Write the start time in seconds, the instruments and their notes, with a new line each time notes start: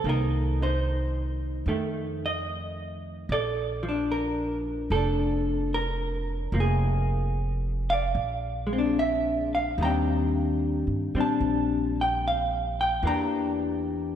0.04 upright bass C2, hollow-body jazz guitar D#3 A#3
0.09 hollow-body jazz guitar D#4 A#4
0.62 hollow-body jazz guitar D#4 C5
1.66 upright bass F2, hollow-body jazz guitar D#3 A3
2.26 hollow-body jazz guitar D#5
3.29 upright bass A#1, hollow-body jazz guitar A4 D5
3.83 hollow-body jazz guitar F3
3.89 hollow-body jazz guitar D4
4.12 hollow-body jazz guitar A#4
4.90 upright bass F1, hollow-body jazz guitar F3 A4
4.95 hollow-body jazz guitar D4
5.74 hollow-body jazz guitar A#4
6.52 upright bass F1, hollow-body jazz guitar F3 A#3
6.60 hollow-body jazz guitar G#4
7.90 hollow-body jazz guitar D5 F5
8.15 upright bass A#1
8.67 hollow-body jazz guitar G#3
8.73 hollow-body jazz guitar C4
8.78 hollow-body jazz guitar D4
8.99 hollow-body jazz guitar E5
9.55 hollow-body jazz guitar F5
9.78 upright bass D#2, hollow-body jazz guitar D#3 G3
9.83 hollow-body jazz guitar C4 D4 G5 A#5
10.87 upright bass G2
11.14 upright bass A#2, hollow-body jazz guitar G3 C4 D4
11.21 hollow-body jazz guitar A5
11.41 upright bass A#1
12.01 hollow-body jazz guitar G5
12.28 hollow-body jazz guitar F5
12.81 hollow-body jazz guitar G5
13.03 upright bass E2, hollow-body jazz guitar E3 A#3
13.07 hollow-body jazz guitar D4 G4 A#5